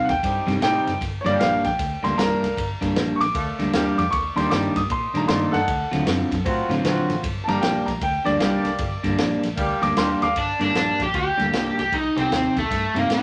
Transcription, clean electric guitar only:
Already playing: C3 G3 C4 D#4
0.47 C3 G3 C4 D#4
0.60 C3 G3 C4 D#4
1.24 G2 G3 A#3 D4
1.38 G2 G3 A#3 D4
2.03 G2 G3 A#3 D4
2.17 G2 G3 A#3 D4
2.81 G2 G3 A#3 D4
2.96 G2 G3 A#3 D4
3.59 G2 G3 A#3 D4
3.73 G2 G3 A#3 D4
4.36 D#3 G3 A#3 D4
4.50 D#3 G3 A#3 D4
5.14 D#3 G3 A#3 D4
5.29 D#3 G3 A#3 D4
5.91 D3 F#3 C4 F4
6.06 D3 F#3 C4 F4
6.69 D3 F#3 C4 F4
6.84 D3 F#3 C4 F4
7.48 G2 G3 A#3 D4
7.62 G2 G3 A#3 D4
8.24 G2 G3 A#3 D4
8.39 G2 G3 A#3 D4
9.04 G2 G3 A#3 D4
9.17 G2 G3 A#3 D4
9.82 G2 G3 A#3 D4
9.96 G2 G3 A#3 D4
10.59 G2 G3 A#3 D4
10.74 G2 G3 A#3 D4
11.37 G2 G3 A#3 D4
11.52 G2 G3 A#3 D4
12.16 C3 C4 D#4 G4
12.31 C3 C4 D#4 G4
12.95 C3 C4 D#4 G4
13.08 C3 C4 D#4 G4

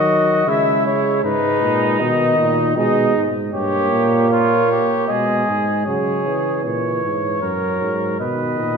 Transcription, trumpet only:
Already playing: F#4
0.49 E4
1.24 D#4
2.77 D#4
3.55 G4
4.32 F4
4.71 G4
5.11 G#4
5.88 G#4
6.66 C#5
7.42 A#4
8.21 B4

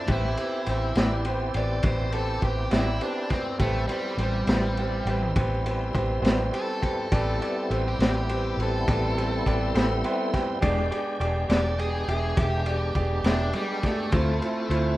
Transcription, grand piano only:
0.09 G4 B4 C5
0.37 G4 B4 C5
0.66 G4 B4 C5
0.96 G4 B4 D5
1.25 G4 B4 C5
1.54 G4 B4 C5
1.84 G4 B4 D5
2.13 G4 B4 C5
2.42 G4 B4 C5
2.71 G4 B4 D5
3.01 G4 B4 C5
3.31 G4 B4 D5
3.60 G4 B4 C5
3.88 G4 B4 C5
4.19 G4 B4 C5
4.49 G4 B4 C5
4.79 G4 B4 C5
5.06 G4 B4 C5
5.36 G4 B4 C5
5.65 G4 B4 C5
5.94 G4 B4 C5
6.22 G4 B4 C5
6.52 G4 B4 C5
6.81 G4 B4 C5
7.12 G4 B4 D5
7.41 G4 B4 D5
7.70 G4 B4 C5
7.99 G4 B4 C5
8.29 G4 B4 C5
8.60 G4 B4 C5
8.88 G4 B4 D5
9.17 G4 B4 C5
9.46 G4 B4 D5
9.74 G4 B4 C5
10.04 G4 B4 C5 E5
10.33 G4 B4 C5 G5
10.61 G4 G#4 D5
10.91 G4 G#4 D5
11.20 G4 G#4 D5
11.49 G4 G#4 D5
11.79 G4 G#4 D5
12.07 G4 G#4 E5
12.37 G4 G#4 E5
12.65 G4 G#4 D5
12.95 G4 G#4 D5
13.25 G4 G#4 E5
13.55 G4 G#4 D5
13.84 G4 G#4 D5
14.13 E4 F4 C5
14.42 E4 F4 C5
14.70 E4 F4 C5

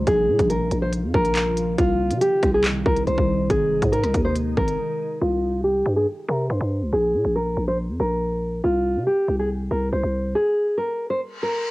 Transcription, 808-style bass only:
0.07 A#1
0.28 A#2
0.39 A#1
0.71 A#1
1.03 F2
1.14 A#1
1.78 C2
2.11 C3
2.43 C2
2.86 C2
3.07 C2
3.18 C2
3.50 G#1
3.82 G#2
4.03 C2
4.14 D#2
4.57 G#1
5.21 C2
5.86 G2
6.29 C3
6.50 G2
6.61 G2
6.82 C#2
6.93 A#1
7.14 A#2
7.25 A#1
7.57 A#1
7.89 F2
8.00 A#1
8.64 C2
8.96 C3
9.28 C2
9.71 C2
9.93 C2
10.04 C2

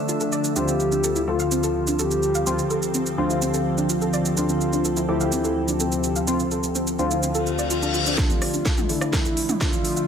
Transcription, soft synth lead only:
0.56 G4
1.28 F4
1.99 G4
4.37 F4
5.08 E4
5.80 C4
8.18 F4
8.89 E4
9.61 F4

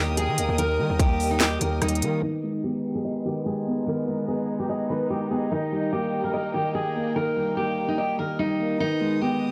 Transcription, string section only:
Already playing: A#4 D#5 G5 D#6
2.23 G#3 B3 D#4 D#5
5.52 A#3 G5
8.80 B3 D#5 D#6

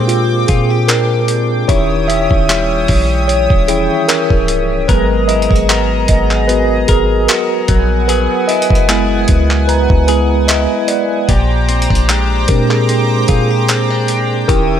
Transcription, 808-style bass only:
Already playing: A#2
0.49 A#2
1.69 D#1
2.31 D#1
2.89 A#1
3.50 D#1
4.30 C#1
4.89 G#1
5.51 G#1
6.09 G#1
6.89 G#1
7.69 A#1
8.71 F#1
9.29 C#2
9.90 C#2
11.29 A#1
11.91 A#1
12.49 A#2
13.29 A#2
14.49 D#1

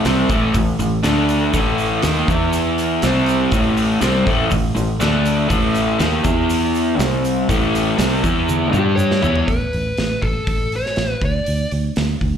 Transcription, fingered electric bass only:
0.05 C2
0.29 A1
0.55 A1
0.79 A1
1.05 D2
1.54 A1
2.04 D#2
2.28 E2
3.03 C2
3.52 A1
4.02 C2
4.27 A1
4.52 A1
4.77 A1
5.01 D2
5.51 A1
6.00 D#2
6.25 E2
6.99 C2
7.49 A1
7.99 C2
8.24 E2
8.74 G2
9.23 E2
9.48 A1
9.74 A1
9.99 A1
10.23 A1
10.48 A1
10.97 A1
11.22 D2
11.48 D2
11.72 D2
11.97 D2
12.22 D2

